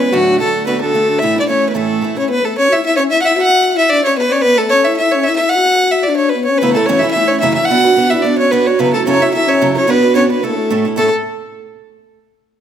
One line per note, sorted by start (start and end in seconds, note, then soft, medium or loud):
0.00 0.12 E3 medium
0.00 0.12 G#3 medium
0.00 0.13 B3 medium
0.00 0.14 C#4 medium
0.00 0.13 E4 medium
0.00 0.14 B4 medium
0.12 0.40 D2 medium
0.12 0.40 A2 medium
0.12 0.39 D3 medium
0.12 0.40 F#3 medium
0.12 0.41 A3 medium
0.12 0.41 D4 medium
0.12 0.39 F#4 loud
0.12 0.40 F#4 medium
0.40 0.66 D3 medium
0.40 0.54 A3 medium
0.40 0.67 A3 medium
0.40 0.67 D4 medium
0.40 0.67 F#4 medium
0.40 0.65 A4 medium
0.67 0.94 D2 medium
0.67 0.94 A2 medium
0.67 0.93 D3 medium
0.67 0.95 A3 medium
0.67 0.80 B3 medium
0.67 0.94 D4 medium
0.67 0.95 F#4 medium
0.67 0.80 B4 medium
0.81 1.11 A3 medium
0.81 1.20 A4 medium
0.94 1.21 D3 medium
0.94 1.23 A3 medium
0.94 1.22 D4 soft
0.94 1.22 F#4 medium
1.10 1.24 D4 medium
1.19 1.36 A2 medium
1.19 1.44 E4 medium
1.19 1.39 E5 loud
1.23 1.37 E3 medium
1.23 1.37 A3 medium
1.23 1.35 C#4 medium
1.23 1.35 E4 medium
1.36 1.48 A3 soft
1.36 1.49 C#4 soft
1.36 1.48 E4 medium
1.36 1.47 D5 medium
1.43 1.51 D4 medium
1.48 1.74 E3 medium
1.48 1.75 A3 soft
1.48 1.69 C#4 medium
1.48 1.75 C#4 medium
1.48 1.75 E4 medium
1.48 1.68 C#5 medium
1.69 1.77 B3 medium
1.69 1.75 B4 medium
1.75 2.02 A2 medium
1.75 2.00 E3 medium
1.75 2.16 A3 medium
1.75 2.02 A3 medium
1.75 2.02 C#4 medium
1.75 2.03 E4 medium
1.75 2.14 A4 medium
2.01 2.16 E3 medium
2.01 2.17 A3 medium
2.01 2.16 C#4 medium
2.01 2.15 E4 medium
2.17 2.30 A3 soft
2.17 2.32 C#4 medium
2.17 2.30 C#4 soft
2.17 2.29 E4 medium
2.17 2.29 C#5 medium
2.30 2.43 B3 medium
2.30 2.46 B4 loud
2.43 2.55 A3 medium
2.43 2.57 A4 medium
2.58 2.71 C#4 medium
2.58 2.74 C#5 loud
2.69 2.84 E4 medium
2.69 2.74 F#4 medium
2.69 2.84 E5 medium
2.84 2.99 E4 medium
2.84 2.96 E5 loud
2.97 3.12 C#4 medium
2.97 3.03 C#5 loud
3.10 3.24 E4 medium
3.10 3.21 E5 loud
3.21 3.37 E4 loud
3.21 3.38 E5 loud
3.21 3.26 F#5 medium
3.35 3.78 F#4 loud
3.35 3.76 F#5 loud
3.77 3.93 E4 loud
3.77 3.91 E5 loud
3.89 4.04 D4 loud
3.89 4.04 D5 loud
4.04 4.19 C#4 medium
4.04 4.17 C#5 loud
4.17 4.33 B3 medium
4.17 4.28 B4 loud
4.29 4.46 C#4 medium
4.29 4.43 C#5 medium
4.29 4.33 D5 medium
4.41 4.59 B3 medium
4.41 4.59 B4 loud
4.58 4.75 A3 medium
4.58 4.71 A4 loud
4.70 4.89 C#4 medium
4.70 4.86 C#5 loud
4.84 5.00 E4 medium
4.84 4.96 E5 loud
4.96 5.13 E5 loud
5.01 5.17 E4 medium
5.11 5.25 C#5 loud
5.16 5.30 C#4 medium
5.23 5.35 E5 loud
5.28 5.41 E4 medium
5.36 5.51 E5 loud
5.42 5.57 E4 medium
5.49 5.93 F#5 loud
5.56 6.10 F#4 loud
5.91 6.04 E5 loud
6.03 6.16 D5 loud
6.08 6.35 D4 medium
6.16 6.30 C#5 medium
6.29 6.44 B4 medium
6.36 6.51 B3 medium
6.45 6.59 C#5 medium
6.50 6.64 C#4 medium
6.58 6.76 F#2 medium
6.58 6.72 B4 loud
6.62 6.77 C#3 medium
6.62 6.76 E3 medium
6.62 6.75 A3 medium
6.62 6.79 B3 loud
6.62 6.75 C#4 medium
6.62 6.74 E4 medium
6.73 6.88 A3 medium
6.73 6.89 C#4 medium
6.73 6.89 E4 medium
6.73 6.87 A4 medium
6.77 6.88 E3 medium
6.77 6.90 A3 medium
6.86 7.03 F#2 medium
6.86 7.04 C#3 medium
6.86 7.03 E3 medium
6.86 7.02 A3 medium
6.86 7.04 C#4 medium
6.86 7.00 C#5 medium
6.90 7.02 C#4 medium
6.90 7.01 E4 medium
6.99 7.15 C#4 medium
6.99 7.16 E4 medium
6.99 7.10 E5 medium
7.04 7.14 E3 soft
7.04 7.14 A3 medium
7.04 7.16 E4 medium
7.11 7.42 E3 medium
7.11 7.29 E5 loud
7.16 7.42 A3 medium
7.16 7.42 C#4 medium
7.16 7.34 E4 medium
7.16 7.42 E4 medium
7.27 7.40 C#5 medium
7.32 7.44 C#4 medium
7.40 7.57 F#2 medium
7.40 7.58 C#3 medium
7.40 7.58 E3 medium
7.40 7.57 A3 medium
7.40 7.57 C#4 medium
7.40 7.56 E4 medium
7.40 7.53 E5 loud
7.54 7.73 E4 medium
7.54 7.70 E4 medium
7.54 7.67 E5 loud
7.59 7.70 E3 soft
7.59 7.71 A3 soft
7.59 7.71 C#4 soft
7.65 8.12 F#5 loud
7.70 7.85 B3 medium
7.70 7.85 D4 medium
7.70 7.84 F#4 medium
7.70 8.08 F#4 loud
7.70 7.83 B4 medium
7.84 7.96 D4 medium
7.84 7.97 F#4 medium
7.84 7.97 B4 medium
7.96 8.12 B3 medium
7.96 8.12 D4 medium
7.96 8.11 F#4 medium
7.96 8.11 B4 medium
8.09 8.24 E4 medium
8.09 8.13 F#4 medium
8.09 8.25 B4 medium
8.09 8.23 E5 medium
8.13 8.23 D4 medium
8.13 8.25 F#4 soft
8.22 8.51 B3 medium
8.22 8.38 D4 medium
8.22 8.51 D4 medium
8.22 8.37 D5 medium
8.26 8.51 F#4 medium
8.26 8.52 B4 medium
8.38 8.51 C#4 medium
8.38 8.53 C#5 loud
8.51 8.65 B3 medium
8.51 8.67 B3 medium
8.51 8.67 D4 medium
8.51 8.67 F#4 medium
8.51 8.67 B4 medium
8.51 8.65 B4 medium
8.66 8.80 D4 soft
8.66 8.80 F#4 soft
8.66 8.80 B4 soft
8.66 8.80 C#5 medium
8.79 8.94 F#2 medium
8.79 8.94 C#3 medium
8.79 8.94 F#3 medium
8.79 8.97 B3 medium
8.79 8.94 C#4 medium
8.79 8.93 E4 medium
8.79 8.93 A4 medium
8.79 8.93 B4 loud
8.93 9.07 A3 medium
8.93 9.06 C#4 medium
8.93 9.07 E4 medium
8.93 9.05 A4 medium
8.93 9.07 A4 medium
9.07 9.21 F#2 medium
9.07 9.21 C#3 medium
9.07 9.21 F#3 medium
9.07 9.21 C#4 medium
9.07 9.22 C#4 medium
9.07 9.20 E4 medium
9.07 9.19 A4 loud
9.07 9.23 C#5 loud
9.20 9.32 F#3 medium
9.20 9.34 C#4 medium
9.20 9.32 E4 medium
9.20 9.34 E4 medium
9.20 9.33 A4 medium
9.20 9.33 E5 medium
9.33 9.61 F#3 medium
9.33 9.61 C#4 medium
9.33 9.49 E4 medium
9.33 9.61 E4 medium
9.33 9.61 A4 medium
9.33 9.50 E5 loud
9.47 9.74 C#4 medium
9.47 9.75 C#5 loud
9.61 9.76 F#2 medium
9.61 9.76 C#3 medium
9.61 9.76 F#3 medium
9.61 9.75 C#4 medium
9.61 9.75 E4 medium
9.61 9.74 A4 medium
9.75 9.87 F#3 soft
9.75 9.87 C#4 medium
9.75 9.87 C#4 soft
9.75 9.88 E4 medium
9.75 9.88 A4 medium
9.75 9.91 C#5 medium
9.87 10.02 B3 medium
9.87 10.18 B3 medium
9.87 10.03 D4 medium
9.87 10.02 F#4 medium
9.87 10.01 B4 medium
9.87 10.15 B4 loud
10.03 10.14 D4 soft
10.03 10.15 F#4 medium
10.03 10.15 B4 medium
10.15 10.30 B3 medium
10.15 10.32 C#4 medium
10.15 10.30 D4 medium
10.15 10.29 F#4 medium
10.15 10.29 B4 loud
10.15 10.29 C#5 medium
10.30 10.44 B3 medium
10.30 10.43 D4 soft
10.30 10.43 F#4 medium
10.30 10.43 B4 medium
10.30 10.45 B4 medium
10.42 10.84 A3 medium
10.42 10.70 A3 medium
10.42 10.71 C#4 medium
10.42 10.71 E4 medium
10.42 10.85 A4 medium
10.42 10.72 A4 medium
10.70 10.85 A2 medium
10.70 10.85 A3 medium
10.70 10.85 C#4 medium
10.70 10.85 E4 medium
10.70 10.84 A4 medium
10.85 10.96 C#4 soft
10.85 10.98 E4 soft
10.85 10.97 A4 medium
10.96 11.08 A2 medium
10.96 11.09 A3 medium
10.96 11.11 A3 loud
10.96 11.09 C#4 medium
10.96 11.09 E4 medium
10.96 11.11 A4 loud
10.96 11.09 A4 medium